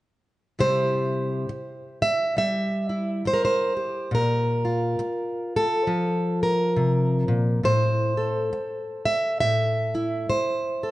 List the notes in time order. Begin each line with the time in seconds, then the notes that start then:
0.59 C3 G3 E4 G4 C5
1.49 muted steel-string acoustic guitar stroke
2.02 E5
2.37 G3 E5
2.89 E4
3.25 C5, muted steel-string acoustic guitar stroke
3.33 A#4
3.45 C5
3.77 G4
4.11 A#2 A#4
4.65 F4
4.99 muted steel-string acoustic guitar stroke
5.56 A4
5.87 F3
6.43 A#4
6.76 C3
7.28 A#2
7.63 A2 C5
8.17 A4
8.53 muted steel-string acoustic guitar stroke
9.05 E5
9.40 A2 E5
9.95 E4
10.29 C5, muted steel-string acoustic guitar stroke
10.83 A4